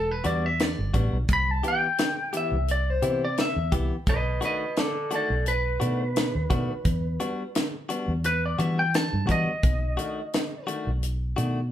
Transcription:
0.00 0.21 E1 medium
0.00 0.11 A4 loud
0.11 0.26 B4 medium
0.24 0.75 E2 medium
0.24 0.48 G3 medium
0.24 0.47 B3 medium
0.24 0.47 D4 medium
0.24 0.47 F#4 medium
0.24 0.46 D5 medium
0.24 closed hi-hat medium
0.46 0.63 E5 medium
0.60 0.95 D5 loud
0.60 snare loud
0.60 closed hi-hat medium
0.79 0.93 G1 medium
0.94 1.11 A1 medium
0.94 1.17 G3 medium
0.94 1.17 B3 medium
0.94 1.17 D4 medium
0.94 1.16 F#4 medium
0.94 kick medium
0.94 closed hi-hat medium
1.13 1.27 B1 medium
1.29 1.61 C2 medium
1.29 kick loud
1.29 closed hi-hat medium
1.33 1.51 B5 loud
1.51 1.65 A5 medium
1.63 1.87 E3 medium
1.63 1.86 B3 medium
1.63 1.86 E4 medium
1.63 1.86 G4 medium
1.63 closed hi-hat medium
1.68 2.33 G5 medium
1.98 snare loud
1.98 closed hi-hat medium
2.33 2.56 E3 medium
2.33 2.56 B3 medium
2.33 2.56 E4 medium
2.33 2.55 G4 medium
2.33 closed hi-hat medium
2.37 2.69 E5 medium
2.52 2.99 C2 medium
2.68 2.90 D5 medium
2.68 closed hi-hat medium
2.90 3.22 C5 medium
3.02 3.52 C3 medium
3.02 3.26 E3 medium
3.02 3.26 B3 medium
3.02 3.25 E4 medium
3.02 3.25 G4 medium
3.02 closed hi-hat medium
3.25 3.39 D5 medium
3.38 3.73 E5 loud
3.38 snare loud
3.38 closed hi-hat medium
3.56 3.71 E2 medium
3.72 3.90 C2 medium
3.72 3.95 E3 medium
3.72 3.95 B3 medium
3.72 3.95 E4 medium
3.72 3.94 G4 medium
3.72 kick medium
3.72 closed hi-hat medium
4.07 4.39 B1 medium
4.07 4.43 B4 medium
4.07 4.42 D#5 loud
4.07 kick loud
4.07 closed hi-hat medium
4.41 4.65 D#3 medium
4.41 4.64 A3 medium
4.41 4.64 D4 medium
4.41 4.64 F#4 medium
4.41 4.76 B4 medium
4.41 closed hi-hat medium
4.45 4.78 D#5 medium
4.76 5.10 A4 medium
4.76 5.12 D5 medium
4.76 snare loud
4.76 closed hi-hat medium
5.11 5.34 D#3 medium
5.11 5.34 A3 medium
5.11 5.34 D4 medium
5.11 5.33 F#4 medium
5.11 5.45 A4 medium
5.11 closed hi-hat medium
5.15 5.47 D5 medium
5.30 5.77 B1 medium
5.46 7.52 B4 loud
5.46 closed hi-hat medium
5.80 6.31 B2 medium
5.80 6.04 D#3 medium
5.80 6.03 A3 medium
5.80 6.03 D4 medium
5.80 6.03 F#4 medium
5.80 closed hi-hat medium
6.16 snare loud
6.16 closed hi-hat medium
6.35 6.49 D#2 medium
6.50 6.68 B2 medium
6.50 6.74 D#3 medium
6.50 6.73 A3 medium
6.50 6.73 D4 medium
6.50 6.73 F#4 medium
6.50 kick medium
6.50 closed hi-hat medium
6.85 7.17 E2 loud
6.85 kick loud
6.85 closed hi-hat medium
7.20 7.43 G3 medium
7.20 7.43 B3 medium
7.20 7.43 D4 medium
7.20 7.42 F#4 medium
7.20 closed hi-hat medium
7.55 snare loud
7.55 closed hi-hat medium
7.89 8.13 G3 medium
7.89 8.12 B3 medium
7.89 8.12 D4 medium
7.89 8.12 F#4 medium
7.89 closed hi-hat medium
8.08 8.55 E2 loud
8.24 8.44 B4 loud
8.24 closed hi-hat medium
8.46 8.60 D5 medium
8.59 9.09 E3 medium
8.59 8.82 G3 medium
8.59 8.82 B3 medium
8.59 8.82 D4 medium
8.59 8.81 F#4 medium
8.59 8.78 E5 loud
8.59 closed hi-hat medium
8.79 8.95 G5 medium
8.94 9.28 A5 medium
8.94 snare loud
8.94 closed hi-hat medium
9.13 9.28 G2 medium
9.27 9.46 E3 medium
9.27 9.51 G3 medium
9.27 9.51 B3 medium
9.27 9.51 D4 medium
9.27 9.50 F#4 medium
9.27 kick medium
9.27 closed hi-hat medium
9.32 10.65 D#5 loud
9.63 9.95 B1 loud
9.63 kick loud
9.63 closed hi-hat medium
9.97 10.21 D#3 medium
9.97 10.21 A3 medium
9.97 10.20 D4 medium
9.97 10.20 F#4 medium
9.97 closed hi-hat medium
10.33 snare loud
10.33 closed hi-hat medium
10.67 10.91 D#3 medium
10.67 10.90 A3 medium
10.67 10.90 D4 medium
10.67 10.90 F#4 medium
10.67 closed hi-hat medium
10.87 11.34 B1 medium
11.03 closed hi-hat medium
11.36 11.70 B2 medium
11.36 11.60 D#3 medium
11.36 11.60 A3 medium
11.36 11.60 D4 medium
11.36 11.59 F#4 medium
11.36 closed hi-hat medium

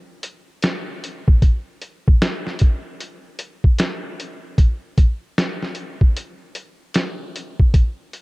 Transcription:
0.23 closed hi-hat medium
0.62 snare loud
0.62 closed hi-hat medium
1.04 closed hi-hat medium
1.28 kick medium
1.42 kick loud
1.42 closed hi-hat medium
1.82 closed hi-hat medium
2.08 kick medium
2.22 snare loud
2.22 closed hi-hat medium
2.47 snare soft
2.59 kick medium
2.59 closed hi-hat medium
3.00 closed hi-hat medium
3.39 closed hi-hat medium
3.64 kick medium
3.79 snare medium
3.79 closed hi-hat medium
4.20 closed hi-hat medium
4.58 kick loud
4.58 closed hi-hat medium
4.98 kick medium
4.98 closed hi-hat medium
5.38 snare loud
5.38 closed hi-hat medium
5.62 snare soft
5.75 closed hi-hat medium
6.01 kick medium
6.17 closed hi-hat medium
6.55 closed hi-hat medium
6.94 snare medium
6.94 closed hi-hat medium
7.36 closed hi-hat medium
7.60 kick medium
7.74 kick loud
7.74 closed hi-hat medium
8.13 closed hi-hat medium

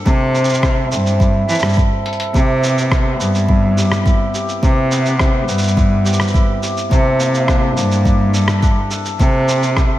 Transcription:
0.00 1.54 A#3 medium
0.00 3.21 D4 medium
0.00 0.62 E4 medium
0.00 0.62 G4 medium
0.05 2.33 C3 medium
0.05 0.84 C3 medium
0.05 1.48 A4 medium
0.05 kick medium
0.05 shaker soft
0.34 0.91 C4 medium
0.34 shaker soft
0.44 shaker soft
0.49 shaker soft
0.54 shaker medium
0.62 1.19 E4 medium
0.62 kick medium
0.62 cross-stick medium
0.62 shaker soft
0.91 1.48 G2 medium
0.91 7.71 C4 medium
0.91 shaker medium
1.06 shaker soft
1.20 1.76 E4 medium
1.20 kick medium
1.20 shaker soft
1.48 1.58 E3 medium
1.48 2.05 A4 medium
1.48 shaker medium
1.54 shaker soft
1.59 1.72 G2 medium
1.59 shaker soft
1.63 cross-stick medium
1.63 shaker soft
1.68 shaker soft
1.73 2.91 E4 medium
1.73 shaker soft
1.77 kick medium
1.77 shaker soft
2.06 4.98 A4 medium
2.06 closed hi-hat soft
2.13 closed hi-hat medium
2.20 closed hi-hat medium
2.34 4.61 C3 medium
2.34 3.13 C3 loud
2.34 3.77 G4 medium
2.34 kick medium
2.34 shaker soft
2.62 3.19 B3 medium
2.62 shaker medium
2.78 shaker soft
2.91 3.48 E4 medium
2.91 kick loud
2.91 cross-stick medium
2.91 shaker soft
3.19 4.27 G2 medium
3.19 4.90 B3 medium
3.19 shaker medium
3.35 shaker soft
3.48 4.05 E4 medium
3.48 kick medium
3.77 4.34 G4 medium
3.77 shaker medium
3.92 cross-stick medium
3.92 shaker soft
4.06 5.19 E4 medium
4.06 kick loud
4.06 shaker soft
4.34 4.63 G4 medium
4.34 shaker medium
4.49 shaker soft
4.63 6.90 C3 medium
4.63 5.41 C3 medium
4.63 6.04 G4 medium
4.63 kick loud
4.63 shaker soft
4.91 5.48 B3 medium
4.91 shaker medium
5.06 shaker soft
5.19 5.76 E4 medium
5.19 kick loud
5.19 cross-stick medium
5.19 shaker soft
5.48 6.55 G2 medium
5.48 7.25 B3 medium
5.48 shaker medium
5.58 shaker medium
5.63 shaker soft
5.68 shaker soft
5.76 6.33 E4 medium
5.76 kick loud
5.76 shaker soft
6.05 6.62 G4 medium
6.05 shaker medium
6.13 shaker medium
6.20 cross-stick medium
6.20 shaker soft
6.27 shaker soft
6.34 9.76 E4 medium
6.34 kick loud
6.34 shaker soft
6.62 9.76 G4 medium
6.62 shaker medium
6.77 shaker soft
6.91 9.18 C3 medium
6.91 7.70 C3 medium
6.91 8.33 A4 medium
6.91 kick loud
6.91 shaker soft
7.19 7.76 A#3 medium
7.19 shaker medium
7.35 shaker soft
7.48 8.05 D4 medium
7.48 kick loud
7.48 cross-stick medium
7.48 shaker soft
7.76 8.84 G2 medium
7.76 9.99 A#3 medium
7.76 shaker medium
7.92 shaker soft
8.05 8.62 D4 medium
8.05 kick medium
8.05 shaker soft
8.33 8.90 A4 medium
8.33 shaker medium
8.48 cross-stick medium
8.48 shaker soft
8.62 9.99 D4 medium
8.62 kick loud
8.62 shaker soft
8.91 9.19 A4 medium
8.91 shaker medium
9.05 shaker soft
9.19 9.99 C3 medium
9.19 9.98 C3 medium
9.19 9.99 A4 medium
9.19 kick loud
9.19 shaker soft
9.48 9.99 C4 medium
9.48 shaker medium
9.63 shaker soft
9.76 9.99 E4 medium
9.76 kick loud
9.76 cross-stick medium
9.76 shaker soft

